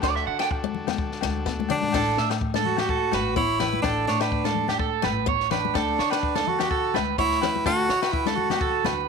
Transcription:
0.00 0.23 D2 loud
0.00 1.90 D4 medium
0.00 0.16 D4 loud
0.00 1.90 F#4 medium
0.00 1.90 A4 medium
0.00 0.16 D5 medium
0.00 kick loud
0.00 snare medium
0.00 low agogo medium
0.16 0.27 E5 loud
0.16 snare soft
0.27 1.24 D3 medium
0.27 0.39 F#5 loud
0.39 0.52 A3 medium
0.39 0.51 G5 loud
0.39 snare medium
0.39 low agogo medium
0.51 muted clean electric guitar stroke medium
0.51 kick loud
0.64 0.76 D4 medium
0.64 high conga medium
0.75 low conga medium
0.87 1.00 B3 medium
0.87 snare medium
0.87 high conga medium
0.87 low conga medium
0.87 low agogo medium
0.98 kick loud
1.12 snare soft
1.21 1.43 D2 loud
1.21 1.35 A3 medium
1.21 snare medium
1.21 high conga medium
1.21 low agogo medium
1.46 1.87 D2 medium
1.46 1.58 B3 medium
1.46 kick medium
1.46 snare medium
1.59 high tom medium
1.59 high conga medium
1.69 1.82 C#4 medium
1.69 2.38 D4 loud
1.69 mid tom medium
1.69 low conga medium
1.69 low agogo medium
1.82 floor tom medium
1.82 high conga medium
1.92 2.14 A1 loud
1.92 2.07 D4 medium
1.92 2.17 A4 medium
1.92 kick loud
1.92 snare medium
1.92 crash loud
1.92 low agogo medium
2.18 3.14 A2 medium
2.18 2.30 E5 medium
2.18 snare medium
2.30 2.43 A3 medium
2.30 muted clean electric guitar stroke medium
2.30 snare medium
2.30 low agogo medium
2.41 kick medium
2.54 2.66 D4 medium
2.54 2.78 A4 medium
2.54 snare medium
2.54 high conga medium
2.65 3.33 F#4 loud
2.65 low conga medium
2.77 2.91 B3 medium
2.77 2.89 G4 medium
2.77 snare medium
2.77 low conga medium
2.77 low agogo medium
2.89 3.12 A4 medium
2.89 kick medium
3.12 3.33 A1 loud
3.12 3.25 A3 medium
3.12 3.36 B4 medium
3.12 snare medium
3.12 high conga medium
3.12 low agogo medium
3.36 3.77 A1 loud
3.36 3.49 B3 medium
3.36 3.81 E4 loud
3.36 3.60 C#5 medium
3.36 kick medium
3.60 3.72 C#4 medium
3.60 3.83 B4 medium
3.60 snare medium
3.60 low conga medium
3.60 low agogo medium
3.73 high conga medium
3.82 4.04 A1 loud
3.82 4.05 D4 loud
3.82 3.97 D4 medium
3.82 4.07 A4 loud
3.82 kick loud
3.82 snare medium
3.82 low agogo medium
4.08 5.05 A2 medium
4.08 4.99 D4 medium
4.08 4.21 C#5 medium
4.08 snare medium
4.20 4.33 A3 medium
4.20 4.44 B4 medium
4.20 snare medium
4.20 low agogo medium
4.32 kick loud
4.44 4.57 D4 medium
4.44 4.68 A4 medium
4.44 snare medium
4.44 high conga medium
4.55 low conga medium
4.68 4.79 G4 medium
4.68 snare medium
4.68 low conga medium
4.68 low agogo medium
4.79 5.02 A4 medium
4.79 kick loud
5.02 5.24 A1 loud
5.02 5.15 A3 medium
5.02 5.27 B4 medium
5.02 snare medium
5.02 high conga medium
5.02 low agogo medium
5.26 5.68 A1 medium
5.26 5.39 B3 medium
5.26 5.51 C#5 medium
5.26 kick loud
5.40 snare soft
5.51 5.63 C#4 medium
5.51 6.49 D4 loud
5.51 5.74 B4 medium
5.51 snare medium
5.51 low conga medium
5.51 low agogo medium
5.65 high conga medium
5.74 5.95 D2 loud
5.74 5.87 D4 loud
5.74 5.98 A4 loud
5.74 kick loud
5.74 snare medium
5.74 low agogo medium
5.99 6.96 D3 medium
5.99 6.11 C#5 medium
5.99 snare medium
6.10 6.25 A3 medium
6.10 6.34 B4 medium
6.10 snare medium
6.10 low agogo medium
6.23 kick medium
6.35 6.48 D4 medium
6.35 6.58 A4 medium
6.35 snare medium
6.35 high conga medium
6.47 6.95 F#4 loud
6.47 low conga medium
6.59 6.72 B3 medium
6.59 6.70 G4 medium
6.59 snare medium
6.59 low conga medium
6.59 low agogo medium
6.71 6.93 A4 loud
6.71 kick loud
6.94 7.15 D2 loud
6.94 7.08 A3 medium
6.94 7.17 B4 medium
6.94 snare medium
6.94 high conga medium
6.94 low agogo medium
7.18 7.58 D2 loud
7.18 7.31 B3 medium
7.18 7.63 E4 loud
7.18 7.41 C#5 medium
7.18 kick loud
7.31 snare soft
7.41 7.55 C#4 medium
7.41 7.64 B4 medium
7.41 snare medium
7.41 low conga medium
7.41 low agogo medium
7.56 high conga medium
7.66 7.86 D2 loud
7.66 7.78 D4 loud
7.66 8.13 F#4 loud
7.66 7.88 A4 medium
7.66 kick loud
7.66 snare medium
7.66 low agogo medium
7.89 8.86 D3 medium
7.89 8.02 C#5 medium
7.89 snare medium
8.02 8.15 A3 medium
8.02 8.25 B4 medium
8.02 snare medium
8.02 low agogo medium
8.12 8.35 E4 loud
8.12 kick loud
8.26 8.39 D4 medium
8.26 8.49 A4 medium
8.26 snare medium
8.26 high conga medium
8.35 9.03 F#4 loud
8.35 low conga medium
8.50 8.63 B3 medium
8.50 8.61 G4 medium
8.50 snare medium
8.50 high conga medium
8.50 low conga medium
8.50 low agogo medium
8.61 8.84 A4 loud
8.61 kick loud
8.84 9.05 D2 loud
8.84 8.98 A3 medium
8.84 9.07 B4 medium
8.84 snare medium
8.84 high conga medium
8.84 low agogo medium

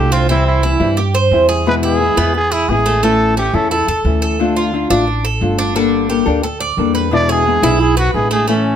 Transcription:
0.00 0.74 C2 medium
0.00 0.28 D3 soft
0.00 0.28 A3 soft
0.00 0.29 D4 soft
0.00 0.29 F4 soft
0.00 0.14 G4 medium
0.00 0.11 A4 medium
0.12 0.28 C4 medium
0.12 0.29 F4 medium
0.29 0.62 C3 medium
0.29 0.62 E3 medium
0.29 0.62 G3 medium
0.29 0.62 C4 medium
0.29 0.63 C4 medium
0.29 0.45 E4 medium
0.29 0.63 E4 medium
0.47 0.94 E4 medium
0.63 0.79 E3 soft
0.63 0.80 G3 soft
0.63 0.79 C4 medium
0.63 0.96 E4 medium
0.63 0.78 E4 soft
0.80 1.28 G2 medium
0.80 0.97 E3 medium
0.80 0.97 G3 medium
0.80 0.97 C4 medium
0.80 0.96 E4 medium
0.97 1.14 G4 medium
0.97 muted nylon-string guitar stroke soft
1.15 1.48 C5 medium
1.31 2.11 E2 medium
1.31 1.65 E3 soft
1.31 1.65 G3 soft
1.31 1.66 C4 soft
1.31 1.66 E4 medium
1.49 1.82 G#4 medium
1.66 1.99 B2 medium
1.66 1.99 E3 medium
1.66 1.99 G#3 medium
1.66 2.00 B3 medium
1.66 2.00 E4 medium
1.66 1.75 B4 loud
1.83 2.16 E4 medium
1.83 2.31 G#4 medium
2.00 2.16 E3 soft
2.00 2.17 G#3 soft
2.00 2.17 B3 soft
2.00 2.16 E4 soft
2.17 2.65 E2 medium
2.17 2.33 E3 medium
2.17 2.33 G#3 medium
2.17 2.50 B3 medium
2.17 2.34 B3 medium
2.17 2.34 E4 medium
2.34 2.54 G#4 medium
2.34 muted nylon-string guitar stroke medium
2.52 2.71 E4 medium
2.52 2.84 G#4 medium
2.68 3.48 A1 medium
2.68 3.01 E3 soft
2.68 3.02 G#3 soft
2.68 3.03 B3 soft
2.68 3.03 E4 medium
2.68 3.05 G#4 medium
2.86 3.02 A3 medium
3.02 3.35 E3 medium
3.02 3.36 A3 medium
3.02 3.36 C#4 medium
3.02 3.37 E4 medium
3.02 3.37 A4 medium
3.36 3.53 E3 soft
3.36 3.53 A3 soft
3.36 3.70 C#4 medium
3.36 3.53 C#4 soft
3.36 3.53 E4 soft
3.36 3.56 G4 medium
3.54 3.85 E2 medium
3.54 3.71 A3 soft
3.54 3.71 C#4 medium
3.54 3.70 E4 medium
3.54 3.70 A4 medium
3.71 3.87 E4 medium
3.71 4.03 A4 medium
3.71 muted nylon-string guitar stroke medium
3.88 4.04 E2 medium
3.88 4.21 A4 medium
4.05 4.84 D2 medium
4.05 4.38 E3 soft
4.05 4.39 A3 soft
4.05 4.39 C#4 soft
4.05 4.39 E4 soft
4.22 4.55 A4 medium
4.39 4.71 D3 medium
4.39 4.72 A3 medium
4.39 4.73 D4 medium
4.39 4.73 F4 medium
4.56 4.89 F4 medium
4.73 4.89 D3 soft
4.73 4.90 A3 soft
4.73 4.90 D4 soft
4.73 4.89 F4 soft
4.90 5.38 A1 medium
4.90 5.06 A3 soft
4.90 5.23 D4 medium
4.90 5.06 D4 medium
4.90 5.06 F4 medium
5.07 muted nylon-string guitar stroke medium
5.25 5.57 A4 medium
5.41 6.21 G1 medium
5.41 5.73 D3 soft
5.41 5.75 A3 soft
5.41 5.75 D4 soft
5.41 5.75 F4 soft
5.59 5.75 D4 medium
5.75 6.08 D3 medium
5.75 6.08 G3 medium
5.75 6.09 A#3 medium
5.75 6.09 D4 medium
5.75 6.09 A4 medium
6.09 6.26 G3 soft
6.09 6.26 A#3 soft
6.09 6.25 D4 soft
6.09 6.43 G4 medium
6.09 6.24 A4 soft
6.26 6.74 D2 medium
6.26 6.43 G3 soft
6.26 6.43 A#3 medium
6.26 6.43 D4 medium
6.26 6.42 A4 medium
6.43 6.60 A4 medium
6.43 muted nylon-string guitar stroke medium
6.60 6.94 D5 medium
6.77 7.57 E2 medium
6.77 7.11 G3 soft
6.77 7.11 A#3 soft
6.77 7.11 D4 medium
6.77 7.12 A4 soft
6.95 7.28 B4 medium
7.11 7.45 B2 medium
7.11 7.45 D3 medium
7.11 7.45 G#3 medium
7.11 7.46 B3 medium
7.11 7.46 E4 medium
7.11 7.32 D5 medium
7.29 7.62 G#4 medium
7.29 7.81 G#4 medium
7.46 7.62 D3 soft
7.46 7.62 G#3 soft
7.46 7.63 B3 medium
7.46 7.62 E4 soft
7.62 8.10 B1 medium
7.62 7.79 D3 medium
7.62 7.79 G#3 medium
7.62 7.79 B3 medium
7.62 7.79 E4 medium
7.62 7.96 E4 medium
7.80 7.96 G#4 medium
7.80 muted nylon-string guitar stroke medium
7.97 8.13 F#4 medium
7.97 8.30 B4 medium
8.13 8.76 A1 medium
8.13 8.47 D3 soft
8.13 8.47 G#3 soft
8.13 8.48 B3 soft
8.13 8.48 E4 medium
8.13 8.30 G#4 medium
8.31 8.46 A3 medium
8.31 8.47 G#4 medium
8.48 8.76 E3 medium
8.48 8.76 A3 medium
8.48 8.76 C#4 medium
8.48 8.76 E4 medium

